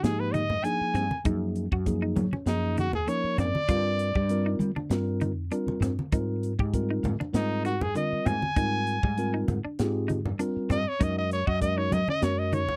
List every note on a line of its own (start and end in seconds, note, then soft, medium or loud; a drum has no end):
0.00 0.49 G#2 medium
0.00 0.43 F3 medium
0.00 0.43 A#3 medium
0.00 0.12 D4 medium
0.00 0.43 G4 medium
0.00 0.21 G#4 medium
0.00 closed hi-hat medium
0.04 0.43 D#4 medium
0.04 snare loud
0.20 0.35 B4 medium
0.33 0.56 D#4 medium
0.33 0.66 D#5 medium
0.33 closed hi-hat medium
0.33 high conga medium
0.49 0.62 G2 medium
0.49 low conga medium
0.64 1.04 F3 medium
0.64 1.04 A#3 medium
0.64 0.86 D4 medium
0.64 1.04 D#4 medium
0.64 1.04 G#4 medium
0.64 1.23 G#5 medium
0.64 closed hi-hat medium
0.80 muted fretless electric bass stroke soft
0.94 1.09 G2 medium
0.94 1.17 C4 medium
0.94 snare soft
0.94 closed hi-hat medium
1.11 high conga medium
1.24 1.68 F#2 loud
1.24 1.64 F3 medium
1.24 1.64 A#3 medium
1.24 1.65 D#4 medium
1.24 1.48 D#4 medium
1.24 1.65 G#4 medium
1.24 kick medium
1.24 closed hi-hat medium
1.56 closed hi-hat medium
1.72 2.12 F#2 medium
1.72 1.95 F#4 medium
1.72 kick medium
1.86 2.25 F3 medium
1.86 2.26 A#3 medium
1.86 2.26 D#4 medium
1.86 2.26 G#4 medium
1.86 kick medium
1.86 closed hi-hat medium
2.02 2.25 D#4 medium
2.16 2.31 F#3 medium
2.16 closed hi-hat medium
2.16 high conga medium
2.16 low conga medium
2.31 2.55 C#4 medium
2.31 muted fretless electric bass stroke soft
2.31 high conga medium
2.46 2.92 F#2 medium
2.46 2.86 F3 medium
2.46 2.87 A#3 medium
2.46 2.87 D#4 medium
2.46 2.77 D#4 medium
2.46 2.87 G#4 medium
2.46 snare loud
2.46 closed hi-hat medium
2.77 3.00 D#4 medium
2.77 2.93 F#4 medium
2.77 closed hi-hat medium
2.77 high conga medium
2.92 3.06 D#2 medium
2.92 3.10 G#4 medium
2.92 low conga medium
3.07 3.47 F3 medium
3.07 3.47 A#3 medium
3.07 3.30 C#4 medium
3.07 3.47 D#4 medium
3.07 3.47 A#4 medium
3.07 3.38 C#5 medium
3.07 closed hi-hat medium
3.23 muted fretless electric bass stroke soft
3.37 3.52 F#2 medium
3.37 3.61 C4 medium
3.37 4.57 D5 loud
3.37 snare soft
3.37 closed hi-hat medium
3.37 low conga medium
3.55 high conga medium
3.68 4.11 G2 medium
3.68 4.08 G3 medium
3.68 4.08 C4 medium
3.68 3.91 F4 medium
3.68 4.09 F4 medium
3.68 4.09 A#4 medium
3.68 kick loud
3.68 closed hi-hat medium
3.99 closed hi-hat medium
4.15 4.56 G2 medium
4.15 4.38 G4 medium
4.15 kick medium
4.29 4.69 G3 medium
4.29 4.69 C4 medium
4.29 4.70 F4 medium
4.29 4.70 A#4 medium
4.29 closed hi-hat medium
4.46 4.68 D#4 medium
4.59 4.74 G3 medium
4.59 closed hi-hat medium
4.59 high conga medium
4.75 4.99 D4 medium
4.75 muted fretless electric bass stroke soft
4.75 high conga medium
4.90 5.36 G2 medium
4.90 5.31 G3 medium
4.90 5.31 C4 medium
4.90 5.31 F4 medium
4.90 5.31 A#4 loud
4.90 snare loud
4.90 closed hi-hat medium
5.21 5.44 D#4 medium
5.21 closed hi-hat medium
5.21 high conga medium
5.36 5.49 F2 medium
5.51 5.91 G3 medium
5.51 5.91 C4 medium
5.51 5.74 D4 medium
5.51 5.91 F4 medium
5.51 5.91 A#4 medium
5.51 closed hi-hat medium
5.66 muted fretless electric bass stroke soft
5.66 high conga medium
5.80 5.95 G2 medium
5.80 6.05 C4 medium
5.80 snare soft
5.80 closed hi-hat medium
5.80 low conga medium
5.99 high conga medium
6.12 6.55 G#2 medium
6.12 6.52 G3 medium
6.12 6.52 C4 medium
6.12 6.35 D#4 medium
6.12 6.52 F4 medium
6.12 6.52 A#4 medium
6.12 kick loud
6.12 closed hi-hat medium
6.43 closed hi-hat medium
6.59 7.00 G#2 medium
6.59 6.82 G4 medium
6.59 kick medium
6.73 7.13 G3 medium
6.73 7.13 C4 medium
6.73 7.13 F4 medium
6.73 7.13 A#4 medium
6.73 kick medium
6.73 closed hi-hat medium
6.90 7.13 D#4 medium
7.03 7.18 G#2 medium
7.03 closed hi-hat medium
7.03 high conga medium
7.03 low conga medium
7.20 7.43 D4 medium
7.20 muted fretless electric bass stroke soft
7.20 high conga medium
7.33 7.80 G#2 medium
7.33 7.73 G3 medium
7.33 7.73 C4 medium
7.33 7.64 D#4 medium
7.33 7.73 F4 medium
7.33 7.74 A#4 medium
7.33 snare loud
7.33 closed hi-hat medium
7.65 7.87 D#4 medium
7.65 7.84 F#4 medium
7.65 closed hi-hat medium
7.80 7.94 G2 medium
7.80 7.95 G#4 medium
7.80 low conga medium
7.95 8.18 D3 medium
7.95 8.35 G3 medium
7.95 8.35 C4 medium
7.95 8.35 F4 medium
7.95 8.35 A#4 medium
7.95 8.28 D#5 medium
7.95 closed hi-hat medium
8.12 muted fretless electric bass stroke soft
8.26 8.40 G#2 medium
8.26 8.49 C4 medium
8.26 9.45 G#5 loud
8.26 closed hi-hat medium
8.26 low conga medium
8.42 high conga medium
8.56 8.99 G#2 medium
8.56 8.96 G3 medium
8.56 8.96 C4 medium
8.56 8.79 D#4 medium
8.56 8.96 F4 medium
8.56 8.97 A#4 medium
8.56 kick loud
8.56 closed hi-hat medium
8.87 closed hi-hat medium
9.03 9.44 G#2 medium
9.03 9.26 G3 medium
9.03 kick medium
9.17 9.57 G3 medium
9.17 9.57 C4 medium
9.17 9.57 F4 medium
9.17 9.58 A#4 medium
9.17 closed hi-hat medium
9.34 9.56 D#4 medium
9.48 9.62 G#2 medium
9.48 closed hi-hat medium
9.48 high conga medium
9.48 low conga medium
9.65 9.87 D4 medium
9.65 muted fretless electric bass stroke soft
9.79 10.26 G#2 medium
9.79 10.18 C4 medium
9.79 10.19 F4 medium
9.79 10.18 G4 medium
9.79 10.19 G#4 medium
9.79 snare loud
9.79 closed hi-hat medium
10.08 10.31 D#4 medium
10.08 closed hi-hat medium
10.08 high conga medium
10.25 10.38 G2 medium
10.25 low conga medium
10.39 10.79 G3 medium
10.39 10.79 C4 medium
10.39 10.62 D4 medium
10.39 10.79 F4 medium
10.39 10.79 A#4 loud
10.39 closed hi-hat medium
10.56 muted fretless electric bass stroke soft
10.69 10.84 G2 medium
10.69 10.92 C4 medium
10.69 10.90 D#5 loud
10.69 snare soft
10.69 closed hi-hat medium
10.69 low conga medium
10.88 11.05 C#5 medium
10.99 11.43 F#2 loud
10.99 11.39 G#3 medium
10.99 11.40 C#4 medium
10.99 11.23 D#4 medium
10.99 11.40 F#4 medium
10.99 11.40 A#4 medium
10.99 11.17 D#5 medium
10.99 kick loud
10.99 closed hi-hat medium
11.18 11.31 D#5 medium
11.31 11.48 C#5 medium
11.31 closed hi-hat medium
11.47 11.88 F#2 medium
11.47 11.70 F#4 medium
11.47 11.60 D#5 medium
11.47 kick medium
11.61 12.00 G#3 medium
11.61 12.01 C#4 medium
11.61 12.01 F#4 medium
11.61 12.01 A#4 medium
11.61 11.79 D#5 medium
11.61 kick medium
11.61 closed hi-hat medium
11.77 12.00 D#4 medium
11.77 11.94 C#5 medium
11.91 12.06 F#3 medium
11.91 12.07 D#5 medium
11.91 closed hi-hat medium
11.91 high conga medium
11.91 low conga medium
12.07 12.31 C#4 medium
12.07 12.25 D#5 loud
12.07 muted fretless electric bass stroke soft
12.07 high conga medium
12.21 12.69 F#2 medium
12.21 12.61 G#3 medium
12.21 12.61 C#4 medium
12.21 12.61 F#4 medium
12.21 12.62 A#4 medium
12.21 12.40 C#5 medium
12.21 snare loud
12.21 closed hi-hat medium
12.39 12.55 D#5 medium
12.52 12.75 D#4 medium
12.52 12.76 C#5 loud
12.52 closed hi-hat medium
12.52 high conga medium
12.69 12.76 D#2 medium
12.69 low conga medium